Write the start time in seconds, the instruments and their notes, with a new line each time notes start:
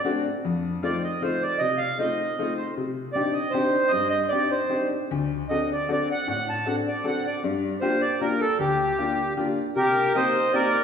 0.05 upright piano A3 C4 D4 F#4
0.45 upright piano F2
0.83 upright piano A3 C4 D#4 F4, accordion D5
1.04 accordion D#5
1.22 upright piano A3 C4 D#4 F4, accordion C5
1.42 accordion D5
1.59 upright piano C3, accordion D#5
1.77 accordion F5
1.99 upright piano A3 C4 D#4 F4, accordion D#5
2.39 upright piano A3 C4 D#4 F4
2.57 accordion C5
2.77 upright piano C3
3.13 upright piano C4 D4 D#4 G4, accordion D5
3.33 accordion D#5
3.50 upright piano C4 D4 D#4 G4, accordion C5
3.88 accordion D#5
3.93 upright piano G2
4.10 accordion D#5
4.29 upright piano C4 D4 D#4 G4, accordion D5
4.51 accordion C5
4.70 upright piano C4 D4 D#4 G4
5.11 upright piano D2
5.49 upright piano C4 D4 F#4 A4, accordion D#5
5.72 accordion D5
5.89 upright piano C4 D4 F#4 A4, accordion D5
6.11 accordion F#5
6.28 upright piano A2, accordion F#5
6.49 accordion A5
6.66 upright piano C4 D4 F#4 A4, accordion F#5
6.88 accordion D5
7.04 upright piano C4 D4 F#4 A4, accordion F#5
7.27 accordion D5
7.44 upright piano G2
7.81 upright piano A#3 D4 F4 G4, accordion C5
8.01 accordion D5
8.21 upright piano A#3 D4 F4 G4, accordion A#4
8.40 accordion A4
8.59 upright piano D2, accordion G4
8.98 upright piano A#3 D4 F4 G4
9.37 upright piano A#3 D4 F4 G4
9.76 upright piano C3, accordion G4 A#4
10.15 upright piano A#3 C4 D#4 G4, accordion C5 D#5
10.53 upright piano A#3 C4 D#4 G4, accordion A#4 D5